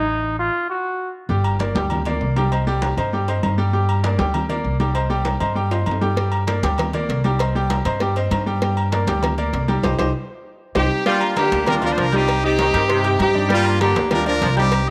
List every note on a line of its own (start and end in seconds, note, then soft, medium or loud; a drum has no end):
0.00 0.48 A1 medium
0.00 0.35 D#4 medium
0.39 0.67 F4 medium
0.70 1.12 F#4 medium
1.29 1.72 G1 loud
1.29 1.54 G3 medium
1.29 1.54 G4 medium
1.29 1.55 G5 medium
1.29 high conga soft
1.44 high conga soft
1.44 low agogo loud
1.59 1.72 A#3 medium
1.59 1.73 A#4 medium
1.59 1.73 D5 medium
1.59 high conga medium
1.59 low agogo medium
1.75 2.17 D2 loud
1.75 2.00 G3 medium
1.75 2.00 G4 medium
1.75 2.01 G5 medium
1.75 high conga medium
1.90 high conga soft
1.90 low conga medium
1.90 low agogo loud
2.05 2.31 A#3 medium
2.05 2.31 A#4 medium
2.05 2.31 D5 medium
2.05 high conga soft
2.05 low conga medium
2.05 low agogo medium
2.21 2.92 C2 medium
2.21 high conga soft
2.21 low timbale medium
2.36 2.49 G3 medium
2.36 2.49 G4 medium
2.36 2.49 G5 medium
2.36 high conga medium
2.36 low agogo medium
2.52 2.64 C4 medium
2.52 2.64 C5 medium
2.52 2.64 D#5 medium
2.52 high conga soft
2.52 low agogo loud
2.67 2.92 G3 loud
2.67 2.92 G4 medium
2.67 2.92 G5 medium
2.67 high conga soft
2.82 high conga loud
2.82 low agogo medium
2.97 3.40 G2 loud
2.97 3.10 C4 medium
2.97 3.10 C5 medium
2.97 3.10 D#5 medium
2.97 high conga soft
2.97 low agogo loud
3.13 3.25 G3 medium
3.13 3.26 G4 medium
3.13 3.26 G5 medium
3.13 high conga soft
3.28 3.53 C4 medium
3.28 3.53 C5 medium
3.28 3.53 D#5 medium
3.28 high conga soft
3.28 low agogo medium
3.43 4.14 G2 medium
3.43 high conga medium
3.43 low timbale medium
3.43 low agogo loud
3.58 3.70 G3 medium
3.58 3.71 G4 medium
3.58 3.71 G5 medium
3.73 3.98 G3 medium
3.73 3.98 G4 medium
3.73 3.98 G5 medium
3.73 high conga soft
3.89 high conga soft
3.89 low agogo loud
4.03 4.16 A#3 medium
4.03 4.16 A#4 medium
4.03 4.16 D5 medium
4.03 high conga medium
4.03 low agogo medium
4.18 4.62 D2 loud
4.18 4.44 G3 medium
4.18 4.44 G4 medium
4.18 4.44 G5 medium
4.18 high conga medium
4.34 high conga soft
4.34 low conga medium
4.34 low agogo loud
4.49 4.74 A#3 medium
4.49 4.74 A#4 medium
4.49 4.75 D5 medium
4.49 high conga soft
4.49 low conga medium
4.49 low agogo medium
4.64 5.35 C2 medium
4.64 high conga soft
4.80 4.92 G3 medium
4.80 4.92 G4 medium
4.80 4.93 G5 medium
4.80 high conga medium
4.80 low agogo medium
4.95 5.07 C4 medium
4.95 5.08 C5 medium
4.95 5.08 D#5 medium
4.95 high conga soft
4.95 low agogo loud
5.10 5.35 G3 medium
5.10 5.35 G4 medium
5.10 5.35 G5 loud
5.10 high conga soft
5.25 high conga loud
5.25 low agogo medium
5.40 5.83 G2 loud
5.40 5.53 C4 medium
5.40 5.53 C5 medium
5.40 5.53 D#5 medium
5.40 high conga soft
5.40 low agogo loud
5.55 5.68 G3 medium
5.55 5.69 G4 medium
5.55 5.69 G5 medium
5.55 high conga soft
5.71 5.96 C4 medium
5.71 5.96 C5 medium
5.71 5.97 D#5 medium
5.71 high conga soft
5.71 high timbale loud
5.71 low agogo medium
5.86 6.58 G2 medium
5.86 high conga medium
5.86 low agogo medium
5.91 low timbale medium
6.01 6.14 G3 medium
6.01 6.14 G4 medium
6.01 6.14 G5 medium
6.01 high conga medium
6.01 low timbale medium
6.16 6.42 G3 medium
6.16 6.42 G4 medium
6.16 6.42 G5 medium
6.16 cowbell loud
6.32 high conga soft
6.32 low agogo loud
6.47 6.60 A#3 medium
6.47 6.60 A#4 medium
6.47 6.61 D5 medium
6.47 cowbell medium
6.47 high conga medium
6.47 low agogo medium
6.63 7.06 D2 loud
6.63 6.88 G3 medium
6.63 6.89 G4 medium
6.63 6.88 G5 medium
6.63 cowbell medium
6.63 high conga medium
6.78 cowbell loud
6.78 high conga soft
6.78 low conga medium
6.78 low agogo medium
6.93 7.19 A#3 medium
6.93 7.19 A#4 medium
6.93 7.19 D5 medium
6.93 high conga soft
6.93 low conga medium
6.93 low agogo medium
7.09 7.80 C2 medium
7.09 cowbell medium
7.09 high conga soft
7.09 low timbale medium
7.24 7.37 G3 medium
7.24 7.37 G4 medium
7.24 7.37 G5 medium
7.24 high conga medium
7.24 low agogo medium
7.39 7.52 C4 medium
7.39 7.52 C5 medium
7.39 7.52 D#5 medium
7.39 cowbell loud
7.39 low agogo loud
7.55 7.80 G3 medium
7.55 7.80 G4 loud
7.55 7.80 G5 loud
7.55 high conga soft
7.70 cowbell medium
7.70 high conga medium
7.70 low agogo medium
7.85 8.28 G2 loud
7.85 7.98 C4 medium
7.85 7.98 C5 medium
7.85 7.98 D#5 medium
7.85 cowbell medium
7.85 low agogo loud
8.00 8.13 G3 medium
8.00 8.14 G4 medium
8.00 8.14 G5 medium
8.00 cowbell loud
8.00 high conga soft
8.16 8.41 C4 medium
8.16 8.41 C5 medium
8.16 8.42 D#5 medium
8.16 high conga soft
8.16 low agogo medium
8.31 9.02 G2 loud
8.31 cowbell medium
8.31 high conga medium
8.31 low agogo loud
8.46 8.59 G3 medium
8.46 8.59 G4 medium
8.46 8.59 G5 medium
8.62 8.87 G3 medium
8.62 8.87 G4 medium
8.62 8.87 G5 medium
8.62 cowbell loud
8.62 high conga soft
8.77 high conga soft
8.77 low agogo loud
8.92 9.05 A#3 medium
8.92 9.05 A#4 medium
8.92 9.05 D5 medium
8.92 cowbell medium
8.92 high conga loud
8.92 low agogo medium
9.07 9.50 D2 loud
9.07 9.33 G3 medium
9.07 9.33 G4 medium
9.07 9.33 G5 medium
9.07 cowbell medium
9.07 high conga medium
9.22 cowbell loud
9.22 high conga soft
9.22 low conga medium
9.22 low agogo medium
9.38 9.63 A#3 medium
9.38 9.63 A#4 medium
9.38 9.63 D5 medium
9.38 high conga soft
9.38 low agogo medium
9.53 9.81 C2 medium
9.53 cowbell medium
9.53 high conga soft
9.53 low timbale medium
9.68 9.81 G3 medium
9.68 9.81 G4 medium
9.68 9.81 G5 medium
9.68 high conga medium
9.68 low agogo medium
9.83 9.95 C2 loud
9.83 9.93 D#4 loud
9.83 9.93 G4 loud
9.83 9.93 C5 medium
9.83 cowbell loud
9.83 high conga loud
9.83 high timbale loud
9.98 10.10 C2 medium
9.98 10.09 D#4 loud
9.98 10.08 G4 loud
9.98 10.09 C5 loud
9.98 cowbell loud
9.98 high conga loud
9.98 high timbale loud
10.75 10.87 C2 loud
10.75 11.04 C4 medium
10.75 10.85 D#4 loud
10.75 11.04 D#4 medium
10.75 10.85 G4 medium
10.75 11.05 G4 loud
10.75 10.85 C5 loud
10.75 cowbell loud
10.75 high conga loud
10.75 high timbale medium
11.06 11.31 G3 medium
11.06 11.22 G3 loud
11.06 11.36 A#3 medium
11.06 11.36 D4 medium
11.06 11.35 F4 loud
11.06 11.31 G4 medium
11.06 11.31 G5 medium
11.06 cowbell loud
11.06 high conga soft
11.21 high conga soft
11.21 low agogo loud
11.36 11.60 D3 medium
11.36 11.62 A#3 medium
11.36 11.94 A#3 medium
11.36 11.67 D4 medium
11.36 11.66 G4 loud
11.36 11.62 A#4 medium
11.36 11.62 A#5 medium
11.36 cowbell medium
11.36 high conga loud
11.36 low agogo medium
11.52 11.94 D2 loud
11.52 cowbell medium
11.52 high conga medium
11.66 11.79 G3 medium
11.66 12.25 D4 medium
11.66 12.25 F4 medium
11.66 11.80 G4 medium
11.66 11.75 A#4 loud
11.66 11.80 G5 medium
11.66 cowbell loud
11.66 high conga soft
11.66 low conga medium
11.66 low agogo loud
11.81 11.90 F3 medium
11.81 12.07 D4 medium
11.81 11.90 A#4 loud
11.81 12.07 D5 medium
11.81 12.07 D6 medium
11.81 high conga soft
11.81 low conga medium
11.81 low agogo medium
11.91 11.97 C5 medium
11.97 12.68 C2 medium
11.97 12.05 F3 medium
11.97 12.14 A#4 loud
11.97 cowbell medium
11.97 high conga soft
12.12 12.37 G3 medium
12.12 12.43 C4 medium
12.12 12.43 D#4 medium
12.12 12.37 G4 medium
12.12 12.43 G4 loud
12.12 12.38 G5 medium
12.12 12.38 G6 medium
12.12 high conga medium
12.12 low agogo medium
12.28 cowbell loud
12.28 high conga soft
12.28 low agogo loud
12.43 13.16 C4 medium
12.43 12.68 D#4 medium
12.43 13.16 D#4 medium
12.43 13.16 G4 loud
12.43 12.69 D#5 medium
12.43 12.69 D#6 medium
12.43 high conga soft
12.59 12.67 D#3 medium
12.59 cowbell medium
12.59 high conga loud
12.59 low agogo medium
12.74 13.16 G2 loud
12.74 12.82 D#3 medium
12.74 12.86 G4 medium
12.74 12.87 G5 medium
12.74 12.87 G6 medium
12.74 cowbell medium
12.74 high conga soft
12.74 low agogo loud
12.89 13.24 C3 medium
12.89 13.01 C4 medium
12.89 13.01 C5 medium
12.89 13.02 C6 medium
12.89 cowbell loud
12.89 high conga soft
13.04 13.29 G4 medium
13.04 13.29 G5 medium
13.04 13.29 G6 medium
13.04 high conga soft
13.04 low agogo medium
13.19 13.90 G2 loud
13.19 13.49 C4 medium
13.19 13.49 D#4 medium
13.19 13.49 G4 loud
13.19 cowbell medium
13.19 high conga medium
13.19 low agogo loud
13.35 13.47 D4 medium
13.35 13.48 D5 medium
13.35 13.48 D6 medium
13.35 high conga medium
13.49 13.65 G3 loud
13.49 13.75 G3 medium
13.49 13.80 A#3 medium
13.49 13.80 D4 medium
13.49 13.80 F4 loud
13.49 13.75 G4 medium
13.49 13.75 G5 medium
13.49 cowbell loud
13.49 high conga soft
13.65 low agogo loud
13.80 14.05 D3 medium
13.80 14.05 A#3 medium
13.80 14.38 A#3 medium
13.80 14.11 D4 medium
13.80 14.09 G4 loud
13.80 14.06 A#4 medium
13.80 14.06 A#5 medium
13.80 cowbell medium
13.80 high conga loud
13.80 low agogo medium
13.96 14.38 D2 loud
13.96 cowbell medium
13.96 high conga medium
14.11 14.23 G3 medium
14.11 14.26 D4 medium
14.11 14.27 F4 medium
14.11 14.24 G4 medium
14.11 14.26 A#4 loud
14.11 14.24 G5 medium
14.11 cowbell loud
14.11 high conga soft
14.11 low conga medium
14.11 low agogo loud
14.26 14.34 F3 medium
14.26 14.51 D4 medium
14.26 14.70 D4 medium
14.26 14.70 F4 medium
14.26 14.55 A#4 loud
14.26 14.51 D5 medium
14.26 14.52 D6 medium
14.26 high conga soft
14.26 low agogo medium
14.41 14.90 C2 loud
14.41 14.49 F3 medium
14.41 cowbell medium
14.41 high conga soft
14.41 low timbale medium
14.56 14.80 G3 medium
14.56 14.87 C4 medium
14.56 14.88 D#4 medium
14.56 14.82 G4 medium
14.56 14.86 G4 loud
14.56 14.82 G5 medium
14.56 14.82 G6 medium
14.56 high conga medium
14.56 low agogo medium
14.72 cowbell loud
14.72 high conga soft
14.72 low agogo loud